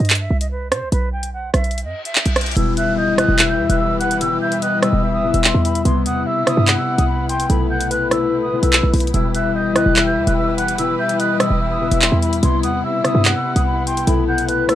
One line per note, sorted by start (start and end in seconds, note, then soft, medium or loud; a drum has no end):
0.00 0.29 G2 loud
0.00 0.19 D#5 medium
0.05 closed hi-hat medium
0.10 clap loud
0.10 closed hi-hat medium
0.15 closed hi-hat medium
0.20 0.37 E5 medium
0.31 0.73 C2 loud
0.41 0.49 D#5 medium
0.41 closed hi-hat medium
0.51 0.68 B4 medium
0.72 0.83 C3 loud
0.72 0.89 C5 medium
0.72 cross-stick loud
0.72 closed hi-hat medium
0.82 0.92 C2 loud
0.92 1.51 B1 loud
0.92 1.09 B4 medium
0.92 closed hi-hat medium
1.13 1.30 G5 medium
1.23 closed hi-hat medium
1.33 1.50 F#5 medium
1.54 1.86 B1 loud
1.54 1.83 E5 medium
1.54 cross-stick medium
1.54 closed hi-hat medium
1.64 closed hi-hat soft
1.71 closed hi-hat medium
1.71 reverse cymbal medium
1.78 closed hi-hat medium
1.85 1.94 F#2 loud
1.85 2.02 D#5 medium
2.05 2.34 E5 medium
2.05 closed hi-hat medium
2.15 clap loud
2.26 2.55 B1 loud
2.26 closed hi-hat medium
2.36 cross-stick loud
2.36 closed hi-hat medium
2.41 closed hi-hat medium
2.46 closed hi-hat medium
2.51 closed hi-hat medium
2.56 3.26 E1 loud
2.56 3.16 B2 loud
2.56 5.82 E3 medium
2.56 3.17 G3 medium
2.56 5.82 E4 medium
2.56 3.18 E4 loud
2.56 5.82 G4 medium
2.56 5.82 B4 loud
2.56 2.74 E6 medium
2.56 closed hi-hat medium
2.56 downlifter medium
2.77 2.97 E5 medium
2.77 2.94 F#6 medium
2.77 closed hi-hat medium
2.98 3.37 D#5 medium
2.98 3.15 G6 medium
3.18 4.19 B2 medium
3.18 4.20 G3 medium
3.18 4.21 E4 medium
3.18 3.47 F#6 medium
3.18 cross-stick loud
3.18 closed hi-hat medium
3.29 3.61 E1 loud
3.39 3.97 E5 medium
3.39 clap loud
3.39 closed hi-hat medium
3.49 3.66 G6 medium
3.59 3.69 E2 loud
3.69 4.39 E1 loud
3.69 3.78 F#6 medium
3.69 closed hi-hat medium
3.80 3.97 E6 loud
4.00 4.20 F#5 medium
4.00 4.17 F#6 medium
4.00 closed hi-hat medium
4.11 closed hi-hat medium
4.20 4.81 B2 loud
4.20 4.81 G3 loud
4.20 4.83 E4 loud
4.20 4.38 E6 loud
4.20 closed hi-hat medium
4.41 4.61 E5 medium
4.41 4.59 G6 medium
4.52 closed hi-hat medium
4.62 5.01 D#5 medium
4.62 4.79 F#6 loud
4.62 closed hi-hat medium
4.82 5.22 B2 medium
4.82 5.22 G3 medium
4.82 5.12 E4 medium
4.82 5.12 E6 medium
4.82 cross-stick loud
4.82 closed hi-hat medium
4.93 5.32 E1 loud
5.03 5.81 E5 loud
5.14 5.31 D#6 medium
5.23 5.90 B2 medium
5.23 5.90 G3 medium
5.23 5.85 E4 medium
5.34 5.54 E1 loud
5.34 5.43 E6 medium
5.34 closed hi-hat medium
5.44 5.61 C6 medium
5.44 clap loud
5.54 5.84 E2 loud
5.65 5.82 B5 medium
5.65 closed hi-hat medium
5.75 closed hi-hat medium
5.85 6.07 C2 loud
5.85 6.45 C3 loud
5.85 7.48 C3 medium
5.85 7.48 G3 medium
5.85 6.47 B3 loud
5.85 9.11 B3 medium
5.85 7.48 E4 loud
5.85 6.47 E4 loud
5.85 6.02 C6 medium
5.85 closed hi-hat medium
6.06 6.25 E2 loud
6.06 6.25 F#5 medium
6.06 6.23 D#6 medium
6.06 closed hi-hat medium
6.26 6.65 E5 medium
6.26 6.44 E6 loud
6.46 7.55 C3 medium
6.46 9.57 B3 medium
6.46 7.50 E4 medium
6.46 6.76 D#6 medium
6.46 cross-stick loud
6.46 closed hi-hat medium
6.57 6.77 G2 loud
6.67 7.26 F#5 medium
6.67 clap loud
6.67 closed hi-hat medium
6.78 6.95 E6 medium
6.98 7.48 C2 loud
6.98 7.07 D#6 medium
6.98 closed hi-hat medium
7.09 7.26 B5 medium
7.29 7.49 G5 medium
7.29 7.46 C6 medium
7.29 closed hi-hat medium
7.40 closed hi-hat medium
7.49 8.59 B1 loud
7.49 8.10 B2 loud
7.49 9.12 A3 medium
7.49 8.11 A3 loud
7.49 14.75 E4 loud
7.49 8.12 E4 loud
7.49 7.67 B5 medium
7.49 closed hi-hat medium
7.70 7.90 F#5 medium
7.70 7.87 G6 medium
7.81 closed hi-hat medium
7.91 9.10 B4 loud
7.91 8.08 F#6 medium
7.91 closed hi-hat medium
8.11 8.51 B2 medium
8.11 8.40 A3 medium
8.11 8.41 E4 medium
8.11 8.40 E6 medium
8.11 cross-stick medium
8.11 closed hi-hat medium
8.42 8.59 D#6 medium
8.52 9.12 B2 medium
8.52 11.85 A3 medium
8.52 9.14 E4 medium
8.63 8.82 B1 loud
8.63 8.91 E6 medium
8.63 closed hi-hat medium
8.73 clap loud
8.83 8.93 B1 loud
8.94 9.13 B1 loud
8.94 closed hi-hat medium
8.94 open hi-hat medium
9.00 closed hi-hat medium
9.07 closed hi-hat medium
9.14 9.83 E1 loud
9.14 9.74 B2 loud
9.14 12.40 E3 medium
9.14 9.74 G3 medium
9.14 9.76 E4 loud
9.14 12.40 G4 medium
9.14 12.40 B4 loud
9.14 9.31 E6 medium
9.14 closed hi-hat medium
9.34 9.54 E5 medium
9.34 9.52 F#6 medium
9.34 closed hi-hat medium
9.55 9.94 D#5 medium
9.55 9.72 G6 medium
9.75 10.77 B2 medium
9.75 10.77 G3 medium
9.75 10.79 E4 medium
9.75 10.05 F#6 medium
9.75 cross-stick loud
9.75 closed hi-hat medium
9.86 10.18 E1 loud
9.96 10.54 E5 medium
9.96 clap loud
9.96 closed hi-hat medium
10.07 10.24 G6 medium
10.17 10.27 E2 loud
10.27 10.96 E1 loud
10.27 10.36 F#6 medium
10.27 closed hi-hat medium
10.37 10.54 E6 medium
10.58 10.77 F#5 medium
10.58 10.75 F#6 medium
10.58 closed hi-hat medium
10.68 closed hi-hat medium
10.78 11.38 B2 loud
10.78 11.39 G3 loud
10.78 11.40 E4 loud
10.78 10.95 E6 loud
10.78 closed hi-hat medium
10.99 11.18 E5 medium
10.99 11.16 G6 medium
11.09 closed hi-hat medium
11.20 11.58 D#5 medium
11.20 11.37 F#6 loud
11.20 closed hi-hat medium
11.39 11.79 B2 medium
11.39 11.80 G3 medium
11.39 11.69 E4 medium
11.39 11.69 E6 medium
11.39 cross-stick loud
11.39 closed hi-hat medium
11.50 11.90 E1 loud
11.61 12.39 E5 loud
11.71 11.88 D#6 medium
11.81 12.48 B2 medium
11.81 12.48 G3 medium
11.81 12.43 E4 medium
11.91 12.11 E1 loud
11.91 12.00 E6 medium
11.91 closed hi-hat medium
12.02 12.19 C6 medium
12.02 clap loud
12.12 12.42 E2 loud
12.22 12.39 B5 medium
12.22 closed hi-hat medium
12.33 closed hi-hat medium
12.42 12.65 C2 loud
12.42 13.03 C3 loud
12.42 14.06 C3 medium
12.42 14.06 G3 medium
12.42 13.04 B3 loud
12.42 14.75 B3 medium
12.42 13.05 E4 loud
12.42 12.60 C6 medium
12.42 closed hi-hat medium
12.63 12.83 E2 loud
12.63 12.83 F#5 medium
12.63 12.81 D#6 medium
12.63 closed hi-hat medium
12.84 13.23 E5 medium
12.84 13.01 E6 medium
13.04 14.12 C3 medium
13.04 14.75 B3 medium
13.04 14.08 E4 medium
13.04 13.34 D#6 medium
13.04 cross-stick medium
13.04 closed hi-hat medium
13.15 13.35 G2 loud
13.25 13.83 F#5 medium
13.25 clap loud
13.25 closed hi-hat medium
13.35 13.52 E6 medium
13.56 14.05 C2 loud
13.56 13.64 D#6 medium
13.56 closed hi-hat medium
13.66 13.83 B5 medium
13.87 14.06 G5 medium
13.87 14.04 C6 medium
13.87 closed hi-hat medium
13.97 closed hi-hat medium
14.07 14.75 B1 loud
14.07 14.67 B2 loud
14.07 14.75 A3 medium
14.07 14.69 A3 loud
14.07 14.69 E4 loud
14.07 14.24 B5 medium
14.07 closed hi-hat medium
14.28 14.47 F#5 medium
14.28 14.45 G6 medium
14.38 closed hi-hat medium
14.48 14.75 B4 medium
14.48 14.66 F#6 medium
14.48 closed hi-hat medium
14.69 14.75 B2 medium
14.69 14.75 A3 medium
14.69 14.75 E4 medium
14.69 14.75 E6 medium
14.69 cross-stick medium
14.69 closed hi-hat medium